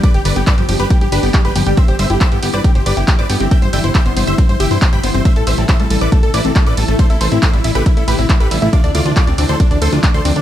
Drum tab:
RD |x-x-x-x-x-x-x-x-|x-x-x-x-x-x-x-x-|x-x-x-x-x-x-x-x-|x-x-x-x-x-x-x-x-|
HH |xxoxxxoxxxooxxox|xxoxxxoxxxoxxxox|xxoxxxoxxxooxxox|xxoxxxoxxxoxxxox|
CP |----x-------x---|----x-------x---|----x-------x---|----x-------x---|
BD |o---o---o---o---|o---o---o---o---|o---o---o---o---|o---o---o---o---|

RD |x-x-x-x-x-x-x-x-|x-x-x-x-x-x-x-x-|
HH |xxoxxxoxxxooxxox|xxoxxxoxxxoxxxox|
CP |----x-------x---|----x-------x---|
BD |o---o---o---o---|o---o---o---o---|